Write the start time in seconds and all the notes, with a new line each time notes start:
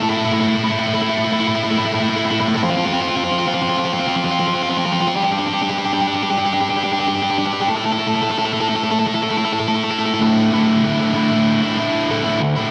0.02 E4 A4
0.09 A3 E4
0.18 A3 E4
0.25 A3 E4
0.32 A3 E4
0.40 A3 E4
0.47 A3 E4
0.55 A3 E4
0.62 A3 E4
0.69 A3 E4
0.79 A3 E4
0.87 A3 E4
0.93 A3 E4
1.02 A3 E4
1.09 A3 E4
1.17 A3 E4
1.25 A3 E4
1.32 A3 E4
1.39 A3 E4
1.47 A3 E4
1.55 A3 E4
1.64 A3 E4
1.71 A3 E4
1.78 A3 E4
1.86 A3 E4
1.93 A3 E4
2.01 A3 E4
2.09 A3 E4
2.16 A3 E4
2.25 A3 E4
2.31 A3 E4
2.40 A3 E4
2.48 A3 E4
2.55 A3 E4
2.63 C4 F4
2.70 C4 F4
2.76 C4 F4
2.85 C4 F4
2.93 C4 F4
3.01 C4 F4
3.08 C4 F4
3.16 C4 F4
3.24 C4 F4
3.31 C4 F4
3.39 C4 F4
3.47 C4 F4
3.54 C4 F4
3.62 C4 F4
3.69 C4 F4
3.78 C4 F4
3.85 C4 F4
3.94 C4 F4
4.00 C4 F4
4.07 C4 F4
4.16 C4 F4
4.24 C4 F4
4.31 C4 F4
4.39 C4 F4
4.47 C4 F4
4.54 C4 F4
4.63 C4 F4
4.69 C4 F4
4.78 C4 F4
4.85 C4 F4
4.93 C4 F4
5.00 C4 F4
5.08 C4 F4
5.16 D4 G4
5.24 D4 G4
5.31 D4 G4
5.39 D4 G4
5.46 D4 G4
5.53 D4 G4
5.62 D4 G4
5.69 D4 G4
5.78 D4 G4
5.85 D4 G4
5.92 D4 G4
6.01 D4 G4
6.08 D4 G4
6.15 D4 G4
6.23 D4 G4
6.31 D4 G4
6.38 D4 G4
6.46 D4 G4
6.53 D4 G4
6.61 D4 G4
6.69 D4 G4
6.77 D4 G4
6.84 D4 G4
6.92 D4 G4
6.99 D4 G4
7.07 D4 G4
7.15 D4 G4
7.22 D4 G4
7.30 D4 G4
7.38 D4 G4
7.46 D4 G4
7.53 D4 G4
7.61 D4 G4
7.69 E4 A4
7.76 E4 A4
7.84 E4 A4
7.93 E4 A4
7.98 E4 A4
8.07 E4 A4
8.14 E4 A4
8.22 E4 A4
8.30 E4 A4
8.38 E4 A4
8.46 E4 A4
8.52 E4 A4
8.60 E4 A4
8.69 E4 A4
8.75 E4 A4
8.84 E4 A4
8.91 E4 A4
9.00 E4 A4
9.06 E4 A4
9.14 E4 A4
9.22 E4 A4
9.29 E4 A4
9.37 E4 A4
9.45 E4 A4
9.53 E4 A4
9.59 E4 A4
9.68 E4 A4
9.75 E4 A4
9.84 E4 A4
9.91 E4 A4
9.99 E4 A4
10.06 E4 A4
10.13 E4 A4
10.19 D2 A2 D3 A3 E4
10.51 A2 D3 A3 E4
10.83 D2 A2 D3 A3 E4
10.98 D3 A3 E4
11.13 A2 D3 A3 E4
11.30 D3 A3 E4
11.62 D3 A3 E4
11.77 A2 D3 A3 E4
12.08 D2 A2 D3 A3 E4
12.24 D3 A3 E4
12.41 muted overdriven electric guitar stroke
12.56 D3 A3 E4